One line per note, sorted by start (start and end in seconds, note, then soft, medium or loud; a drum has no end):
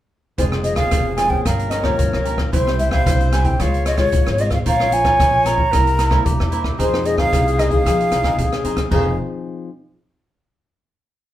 0.38 0.84 F1 medium
0.38 0.90 F2 medium
0.38 0.48 F3 soft
0.38 0.48 G#3 medium
0.38 0.48 C4 medium
0.38 0.76 F4 medium
0.38 0.76 G#4 medium
0.38 1.48 G#4 medium
0.38 0.44 C5 medium
0.38 0.77 C5 medium
0.38 0.77 F5 medium
0.38 kick medium
0.38 closed hi-hat medium
0.52 0.61 F3 medium
0.52 0.62 G#3 medium
0.52 0.62 C4 medium
0.52 cross-stick medium
0.64 1.14 F3 soft
0.64 1.14 G#3 soft
0.64 1.14 C4 medium
0.64 0.76 D#5 medium
0.64 closed hi-hat soft
0.76 0.87 F4 medium
0.76 0.87 G#4 medium
0.76 0.87 C5 medium
0.76 1.15 F5 medium
0.76 0.88 F5 medium
0.76 kick medium
0.76 cross-stick medium
0.76 closed hi-hat soft
0.91 1.38 F1 medium
0.91 1.42 C3 medium
0.91 1.04 F4 soft
0.91 1.05 G#4 soft
0.91 1.05 C5 soft
0.91 1.05 F5 soft
0.91 kick medium
0.91 cross-stick medium
0.91 closed hi-hat medium
1.07 1.16 G#4 soft
1.07 1.17 C5 soft
1.07 1.17 F5 soft
1.16 1.27 F3 medium
1.16 1.28 G#3 medium
1.16 1.28 C4 medium
1.16 1.30 F4 medium
1.16 1.30 G#4 medium
1.16 1.30 C5 medium
1.16 1.29 F5 medium
1.16 1.31 G#5 medium
1.16 cross-stick medium
1.16 closed hi-hat soft
1.30 1.81 F3 soft
1.30 1.81 A#3 medium
1.30 1.81 C#4 medium
1.30 1.44 C5 medium
1.30 1.44 F5 soft
1.30 1.44 G5 medium
1.30 kick medium
1.45 1.91 G1 loud
1.45 1.97 G2 medium
1.45 1.70 G4 medium
1.45 1.70 A#4 medium
1.45 2.52 A#4 medium
1.45 1.71 C#5 medium
1.45 1.71 F5 medium
1.45 kick medium
1.45 cross-stick medium
1.45 closed hi-hat medium
1.59 closed hi-hat soft
1.70 1.83 G4 medium
1.70 1.83 A#4 soft
1.70 1.83 C#5 medium
1.70 1.86 D#5 medium
1.70 1.84 F5 medium
1.70 cross-stick medium
1.70 closed hi-hat soft
1.83 2.21 F3 medium
1.83 2.21 A#3 medium
1.83 2.22 C#4 medium
1.83 1.94 G4 medium
1.83 1.94 A#4 medium
1.83 2.25 C#5 medium
1.83 1.94 C#5 medium
1.83 1.95 F5 medium
1.83 kick medium
1.83 cross-stick medium
1.98 2.11 G1 medium
1.98 2.50 G2 soft
1.98 kick medium
1.98 closed hi-hat medium
2.13 2.48 C#2 medium
2.13 2.24 A#4 soft
2.13 2.25 C#5 soft
2.13 2.25 F5 soft
2.13 cross-stick medium
2.25 2.50 F3 medium
2.25 2.50 A#3 medium
2.25 2.50 C#4 medium
2.25 2.38 G4 medium
2.25 2.38 A#4 medium
2.25 2.37 C#5 medium
2.25 2.36 F5 medium
2.25 closed hi-hat medium
2.37 2.52 A#4 soft
2.37 2.51 C#5 soft
2.37 2.51 F5 soft
2.37 kick medium
2.37 cross-stick medium
2.52 2.98 C2 medium
2.52 3.04 C3 medium
2.52 2.62 G3 medium
2.52 2.62 C4 soft
2.52 2.90 E4 medium
2.52 2.62 E4 medium
2.52 2.91 G4 medium
2.52 3.61 C5 loud
2.52 2.91 C5 medium
2.52 2.78 C5 medium
2.52 2.91 E5 medium
2.52 kick medium
2.52 closed hi-hat medium
2.67 2.76 G3 medium
2.67 2.76 C4 medium
2.67 2.77 E4 medium
2.67 cross-stick medium
2.79 3.29 G3 medium
2.79 3.29 C4 medium
2.79 2.91 E5 medium
2.79 closed hi-hat soft
2.91 3.01 E4 medium
2.91 3.01 G4 medium
2.91 3.01 C5 medium
2.91 3.02 E5 medium
2.91 3.29 F5 medium
2.91 kick medium
2.91 cross-stick medium
3.06 3.52 C2 medium
3.06 3.57 G2 soft
3.06 3.18 E4 soft
3.06 3.19 G4 medium
3.06 3.19 C5 soft
3.06 3.19 E5 medium
3.06 kick medium
3.06 cross-stick medium
3.06 closed hi-hat medium
3.21 3.32 G4 soft
3.21 3.33 C5 soft
3.21 3.33 E5 soft
3.21 closed hi-hat soft
3.32 3.55 G3 medium
3.32 3.56 C4 medium
3.32 3.45 E4 medium
3.32 3.56 E4 medium
3.32 3.45 G4 medium
3.32 3.45 C5 medium
3.32 3.44 E5 medium
3.32 3.47 G#5 medium
3.32 cross-stick medium
3.32 closed hi-hat soft
3.44 3.59 G4 soft
3.44 3.58 C5 soft
3.44 3.58 E5 medium
3.44 3.63 G5 medium
3.44 kick medium
3.44 closed hi-hat soft
3.59 4.05 C#2 loud
3.59 4.11 C#3 medium
3.59 3.96 G#3 soft
3.59 3.85 F4 medium
3.59 3.96 F4 medium
3.59 3.85 C5 medium
3.59 4.39 C#5 medium
3.59 3.86 C#5 medium
3.59 3.86 F5 medium
3.59 kick medium
3.59 cross-stick medium
3.59 closed hi-hat medium
3.74 closed hi-hat soft
3.86 3.97 F4 medium
3.86 3.97 C5 medium
3.86 3.98 C#5 medium
3.86 3.98 D#5 medium
3.86 3.98 F5 soft
3.86 cross-stick medium
3.86 closed hi-hat soft
3.97 4.34 G#3 medium
3.97 4.08 F4 medium
3.97 4.35 F4 medium
3.97 4.08 C5 medium
3.97 4.08 C#5 medium
3.97 4.42 C#5 loud
3.97 4.08 F5 medium
3.97 kick medium
3.97 cross-stick medium
3.97 closed hi-hat soft
4.12 4.24 C#2 medium
4.12 4.64 G#2 medium
4.12 kick medium
4.12 closed hi-hat medium
4.26 4.61 G#1 medium
4.26 4.39 C5 soft
4.26 4.39 C#5 soft
4.26 4.39 F5 soft
4.26 cross-stick medium
4.26 closed hi-hat soft
4.38 4.56 G#3 soft
4.38 4.57 C4 medium
4.38 4.56 F4 medium
4.38 4.52 F4 medium
4.38 4.52 C5 medium
4.38 4.52 C#5 medium
4.38 4.52 D#5 medium
4.38 4.50 F5 medium
4.38 closed hi-hat soft
4.50 4.65 C5 soft
4.50 4.65 C#5 soft
4.50 4.64 F5 medium
4.50 4.59 F5 medium
4.50 kick medium
4.50 cross-stick medium
4.50 closed hi-hat soft
4.65 5.12 A#1 medium
4.65 5.17 A#2 medium
4.65 4.75 F3 medium
4.65 4.76 C#4 medium
4.65 5.03 F4 medium
4.65 4.76 F4 medium
4.65 5.03 A#4 medium
4.65 5.73 C#5 loud
4.65 5.03 C#5 medium
4.65 5.03 F5 medium
4.65 4.95 F5 loud
4.65 kick medium
4.65 closed hi-hat medium
4.80 4.90 F3 medium
4.80 4.90 C#4 medium
4.80 4.90 F4 medium
4.80 cross-stick medium
4.92 5.18 F3 soft
4.92 5.27 C#4 medium
4.92 5.27 F4 medium
4.92 5.48 G#5 loud
4.92 closed hi-hat soft
5.04 5.14 F4 medium
5.04 5.14 A#4 medium
5.04 5.14 C#5 medium
5.04 5.14 F5 medium
5.04 kick medium
5.04 cross-stick medium
5.04 closed hi-hat soft
5.19 5.65 A#1 medium
5.19 5.44 F3 medium
5.19 5.32 F4 soft
5.19 5.32 A#4 soft
5.19 5.32 C#5 medium
5.19 5.32 F5 soft
5.19 kick medium
5.19 cross-stick medium
5.19 closed hi-hat medium
5.33 5.44 A#4 soft
5.33 5.44 C#5 soft
5.33 5.45 F5 soft
5.44 5.61 F3 medium
5.44 5.62 C#4 medium
5.44 5.58 F4 medium
5.44 5.62 F4 medium
5.44 5.58 A#4 medium
5.44 5.57 C#5 medium
5.44 5.56 F5 medium
5.44 6.53 A#5 loud
5.44 cross-stick medium
5.44 closed hi-hat medium
5.57 5.72 A#4 soft
5.57 5.71 C#5 soft
5.57 5.71 F5 medium
5.57 kick medium
5.72 6.18 C2 loud
5.72 6.23 C3 medium
5.72 5.98 G3 soft
5.72 5.98 A#3 medium
5.72 5.97 E4 medium
5.72 5.98 E4 medium
5.72 6.27 A#4 loud
5.72 5.98 A#4 medium
5.72 5.98 C5 medium
5.72 5.98 E5 medium
5.72 kick medium
5.72 cross-stick medium
5.72 closed hi-hat medium
5.87 closed hi-hat soft
5.98 6.09 E4 medium
5.98 6.10 A#4 medium
5.98 6.10 C5 medium
5.98 6.10 E5 medium
5.98 cross-stick medium
5.98 closed hi-hat soft
6.10 6.47 G3 medium
6.10 6.47 A#3 medium
6.10 6.20 E4 medium
6.10 6.48 E4 medium
6.10 6.21 A#4 medium
6.10 6.21 C5 medium
6.10 6.21 E5 medium
6.10 kick medium
6.10 cross-stick medium
6.26 6.37 C2 medium
6.26 6.76 G2 soft
6.26 6.80 G4 medium
6.26 kick medium
6.26 closed hi-hat medium
6.39 6.74 E2 medium
6.39 6.51 A#4 soft
6.39 6.51 C5 soft
6.39 6.52 E5 soft
6.39 cross-stick medium
6.51 6.77 G3 medium
6.51 6.77 A#3 medium
6.51 6.64 E4 medium
6.51 6.77 E4 medium
6.51 6.64 A#4 medium
6.51 6.63 C5 medium
6.51 6.62 E5 medium
6.51 closed hi-hat soft
6.63 6.78 A#4 soft
6.63 6.77 C5 soft
6.63 6.77 E5 soft
6.63 kick medium
6.63 cross-stick medium
6.78 7.25 F2 medium
6.78 7.30 F3 medium
6.78 6.87 C4 medium
6.78 7.16 D#4 medium
6.78 6.87 D#4 soft
6.78 7.17 G#4 medium
6.78 8.38 G#4 loud
6.78 6.87 G#4 medium
6.78 7.17 C5 medium
6.78 7.07 C5 medium
6.78 7.18 F5 medium
6.78 kick medium
6.78 closed hi-hat medium
6.93 7.02 C4 medium
6.93 7.02 D#4 medium
6.93 7.02 G#4 medium
6.93 cross-stick medium
7.05 7.54 C4 medium
7.05 7.55 D#4 medium
7.05 7.55 G#4 medium
7.05 7.18 D#5 loud
7.05 closed hi-hat soft
7.18 7.27 D#4 medium
7.18 7.27 G#4 medium
7.18 7.28 C5 medium
7.18 7.61 F5 loud
7.18 7.28 F5 medium
7.18 kick medium
7.18 cross-stick medium
7.32 7.78 C2 medium
7.32 7.83 C3 medium
7.32 7.44 D#4 soft
7.32 7.45 G#4 soft
7.32 7.45 C5 soft
7.32 7.44 F5 medium
7.32 kick medium
7.32 cross-stick medium
7.32 closed hi-hat medium
7.45 7.57 G#4 soft
7.45 7.57 C5 soft
7.45 7.58 F5 soft
7.45 closed hi-hat soft
7.57 7.68 C4 medium
7.57 7.70 D#4 medium
7.57 7.68 D#4 medium
7.57 7.70 G#4 medium
7.57 7.68 G#4 medium
7.57 7.70 C5 medium
7.57 7.72 D#5 medium
7.57 7.69 F5 medium
7.57 cross-stick medium
7.57 closed hi-hat soft
7.70 7.81 C4 soft
7.70 7.81 D#4 soft
7.70 7.84 G#4 soft
7.70 7.82 G#4 medium
7.70 7.84 C5 soft
7.70 7.83 F5 soft
7.70 8.61 F5 medium
7.70 kick medium
7.70 closed hi-hat soft
7.85 8.08 F3 medium
7.85 8.37 F3 medium
7.85 8.22 C4 soft
7.85 8.10 D#4 medium
7.85 8.22 D#4 soft
7.85 8.10 G#4 medium
7.85 8.22 G#4 medium
7.85 8.11 C5 medium
7.85 8.11 F5 medium
7.85 kick medium
7.85 cross-stick medium
7.85 closed hi-hat medium
8.00 closed hi-hat soft
8.11 8.36 C2 medium
8.11 8.23 D#4 medium
8.11 8.24 G#4 medium
8.11 8.24 C5 medium
8.11 8.24 F5 medium
8.11 cross-stick medium
8.11 closed hi-hat soft
8.24 8.60 C4 medium
8.24 8.34 D#4 medium
8.24 8.61 D#4 medium
8.24 8.34 G#4 medium
8.24 8.61 G#4 medium
8.24 8.34 C5 medium
8.24 8.34 F5 medium
8.24 kick medium
8.24 cross-stick medium
8.24 closed hi-hat soft
8.38 8.63 D#2 medium
8.38 8.89 C3 medium
8.38 8.88 G#4 medium
8.38 kick medium
8.38 closed hi-hat medium
8.52 8.64 G#4 soft
8.52 8.64 C5 soft
8.52 8.64 F5 soft
8.52 cross-stick medium
8.52 closed hi-hat soft
8.64 8.89 F2 medium
8.64 8.82 C4 medium
8.64 8.82 D#4 medium
8.64 8.77 D#4 medium
8.64 8.77 G#4 medium
8.64 8.82 G#4 medium
8.64 8.76 C5 medium
8.64 8.75 F5 medium
8.64 closed hi-hat soft
8.76 8.90 G#4 soft
8.76 8.90 C5 soft
8.76 8.90 F5 soft
8.76 kick medium
8.76 cross-stick medium
8.76 closed hi-hat soft
8.91 9.16 F1 loud
8.91 9.69 F3 medium
8.91 9.69 C4 medium
8.91 9.13 D#4 medium
8.91 9.69 D#4 medium
8.91 9.16 G#4 medium
8.91 9.13 G#4 medium
8.91 9.69 G#4 medium
8.91 9.13 C5 medium
8.91 9.17 F5 medium
8.91 9.13 F5 medium
8.91 kick medium
8.91 crash medium